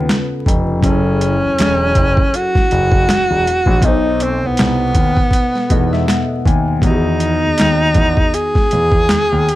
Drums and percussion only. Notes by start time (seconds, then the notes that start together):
0.09 finger snap, snare, closed hi-hat
0.46 kick, closed hi-hat
0.83 kick, closed hi-hat
1.21 closed hi-hat
1.59 finger snap, snare, closed hi-hat
1.95 kick, closed hi-hat
2.17 kick
2.34 closed hi-hat
2.55 kick, snare
2.71 closed hi-hat
2.92 kick
3.09 finger snap, snare, closed hi-hat
3.47 closed hi-hat
3.66 kick
3.82 kick, closed hi-hat
4.20 closed hi-hat
4.57 finger snap, snare, closed hi-hat
4.95 kick, closed hi-hat
5.17 kick
5.31 kick, closed hi-hat
5.56 snare
5.70 kick, closed hi-hat
5.93 snare
6.08 finger snap, snare, closed hi-hat
6.45 kick, closed hi-hat
6.82 kick, closed hi-hat
7.20 closed hi-hat
7.58 finger snap, snare, closed hi-hat
7.94 kick, closed hi-hat
8.17 kick
8.34 closed hi-hat
8.55 kick, snare
8.71 closed hi-hat
8.92 kick
9.09 finger snap, snare, closed hi-hat
9.49 closed hi-hat